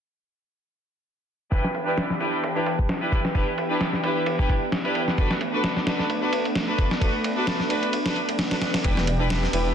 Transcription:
1.52 analog synth pad E3 B3 D4 G4, string section D4 E4 G4 B4, kick, ride
1.64 snare
1.75 ride
1.87 string section D4 E4 G4 B4
1.98 snare, ride
2.10 snare
2.20 string section D4 E4 G4 B4, ride
2.44 ride
2.56 string section D4 E4 G4 B4, ride
2.66 ride
2.79 kick
2.89 snare, ride
3.02 string section D4 E4 G4 B4
3.12 kick, ride
3.25 snare
3.35 string section D4 E4 G4 B4, kick, ride
3.58 ride
3.70 string section D4 E4 G4 B4
3.81 snare, ride
3.93 snare
4.04 string section D4 E4 G4 B4, ride
4.26 ride
4.39 string section D4 E4 G4 B4, kick
4.49 kick, ride
4.72 snare, ride
4.85 string section D4 E4 G4 B4, ride
4.95 ride
5.08 snare
5.18 analog synth pad A3, string section D4 F#4 A4 B4, kick, ride
5.31 snare
5.41 ride
5.54 string section D4 F#4 A4 B4
5.64 snare, ride
5.77 snare
5.87 string section D4 F#4 A4 B4, snare, ride
5.99 snare
6.10 ride
6.22 string section D4 F#4 A4 B4
6.33 ride
6.45 ride
6.55 snare, ride
6.68 string section D4 F#4 A4 B4
6.78 kick, ride
6.91 snare
7.01 string section D4 F#4 A4 B4, kick, ride
7.24 ride
7.37 string section D4 F#4 A4 B4
7.47 snare, ride
7.60 snare
7.70 string section D4 F#4 A4 B4, ride
7.83 ride
7.93 ride
8.05 string section D4 F#4 A4 B4, snare, ride
8.16 ride
8.29 ride
8.39 snare, ride
8.51 string section D4 F#4 A4 B4, snare, ride
8.61 snare, ride
8.74 snare, ride
8.84 detuned saw bass E1, analog synth pad E3 G4, string section D4 E4 G4 B4, kick, ride
8.97 snare
9.07 ride
9.20 string section D4 E4 G4 B4
9.30 snare, ride
9.43 snare
9.53 detuned saw bass E1, string section D4 E4 G4 B4, ride

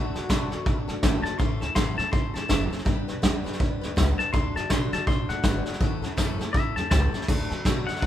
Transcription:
Already playing: upright bass D2, steel-string acoustic guitar D3 A3 D4 F#4 A4, clean electric guitar F#4
0.14 upright bass G2, steel-string acoustic guitar D4 F#4 A4, snare
0.29 upright bass B2, steel-string acoustic guitar D3 A3 D4 F#4 A4, kick, snare, hi-hat pedal
0.51 upright bass D3, steel-string acoustic guitar D4 F#4 A4, snare
0.66 upright bass B2, steel-string acoustic guitar A3 D4 F#4 A4, kick, snare
0.88 upright bass A2, steel-string acoustic guitar D4 F#4 A4, snare
1.03 upright bass G#1, steel-string acoustic guitar D3 A3 D4 F#4 A4, kick, snare, hi-hat pedal
1.23 steel-string acoustic guitar F#4 A4, clean electric guitar A5, muted upright bass stroke, snare
1.28 steel-string acoustic guitar D4
1.38 upright bass A1, steel-string acoustic guitar A2 E3 A3 C#4 E4 A4, clean electric guitar C6, kick, snare
1.60 upright bass D2, steel-string acoustic guitar A3 C#4 E4 A4, clean electric guitar A5, snare
1.75 upright bass F#2, steel-string acoustic guitar A2 E3 A3 C#4 E4 A4, clean electric guitar C6, kick, snare, hi-hat pedal
1.97 upright bass A2, steel-string acoustic guitar A3 C#4 E4 A4, clean electric guitar A5, snare
2.11 upright bass G2, steel-string acoustic guitar A3 C#4 E4 A4, clean electric guitar C6, kick, snare
2.34 upright bass E2, steel-string acoustic guitar A3 C#4 E4 A4, clean electric guitar A5, snare
2.48 upright bass F#1, steel-string acoustic guitar A2 E3 A3 C#4 E4 A4, kick, snare, hi-hat pedal
2.71 steel-string acoustic guitar A3 C#4 E4 A4, muted upright bass stroke, snare
2.79 snare
2.85 upright bass G1, steel-string acoustic guitar G3 D4 G4 B4, kick, snare
3.08 upright bass B1, steel-string acoustic guitar D4 G4 B4, snare
3.22 upright bass E2, steel-string acoustic guitar G3 D4 G4 B4, kick, snare, hi-hat pedal
3.44 upright bass G2, steel-string acoustic guitar D4 G4 B4, snare
3.53 snare
3.58 upright bass E2, steel-string acoustic guitar G3 D4 G4 B4, kick, snare
3.81 upright bass D2, steel-string acoustic guitar G4 B4, snare
3.85 steel-string acoustic guitar D4
3.96 upright bass C#2, steel-string acoustic guitar G3 D4 G4 B4, kick, snare, hi-hat pedal
4.18 steel-string acoustic guitar D4 G4 B4, clean electric guitar A5, muted upright bass stroke, snare
4.33 upright bass D2, steel-string acoustic guitar D3 A3 D4 F#4 A4, clean electric guitar C6, kick, snare
4.55 upright bass G2, steel-string acoustic guitar D4 F#4 A4, clean electric guitar A5, snare
4.70 upright bass B2, steel-string acoustic guitar D3 A3 D4 F#4 A4, clean electric guitar C6, kick, snare, hi-hat pedal
4.92 upright bass D3, steel-string acoustic guitar F#4 A4, clean electric guitar A5, snare
4.96 steel-string acoustic guitar D4
5.07 upright bass B2, steel-string acoustic guitar A3 D4 F#4 A4, clean electric guitar C6, kick, snare
5.29 upright bass A2, steel-string acoustic guitar D4 F#4 A4, clean electric guitar F#5, snare
5.43 upright bass G1, steel-string acoustic guitar D3 A3 D4 F#4 A4, kick, snare, hi-hat pedal
5.65 steel-string acoustic guitar D4 F#4 A4, muted upright bass stroke, snare
5.73 snare
5.80 upright bass A1, steel-string acoustic guitar A2 E3 A3 C#4 E4 A4, kick, snare
6.01 upright bass D2, steel-string acoustic guitar C#4 E4 A4, snare
6.06 steel-string acoustic guitar A3
6.17 upright bass F#2, steel-string acoustic guitar A2 E3 A3 C#4 E4 A4, kick, snare, hi-hat pedal
6.39 upright bass A2, steel-string acoustic guitar A3 C#4 E4 A4, snare
6.53 upright bass G2, steel-string acoustic guitar A3 C#4 E4 A4, clean electric guitar E5, kick, snare
6.75 upright bass E2, steel-string acoustic guitar C#4 E4 A4, clean electric guitar A5, snare
6.80 steel-string acoustic guitar A3
6.91 upright bass C#2, steel-string acoustic guitar A2 E3 A3 C#4 E4 A4, clean electric guitar A5, kick, snare, hi-hat pedal
7.12 steel-string acoustic guitar A3 C#4 E4 A4, muted upright bass stroke, snare
7.21 snare
7.28 upright bass D2, steel-string acoustic guitar D3 A3 D4 F#4 A4, kick, snare, crash
7.50 upright bass G2, steel-string acoustic guitar D4 F#4 A4, snare
7.65 upright bass B2, steel-string acoustic guitar D3 A3 D4 F#4 A4, kick, snare, hi-hat pedal
7.87 steel-string acoustic guitar D4 F#4 A4, clean electric guitar F#5, snare
7.96 snare
8.01 upright bass B2, steel-string acoustic guitar A3 D4, clean electric guitar F#5, kick, snare

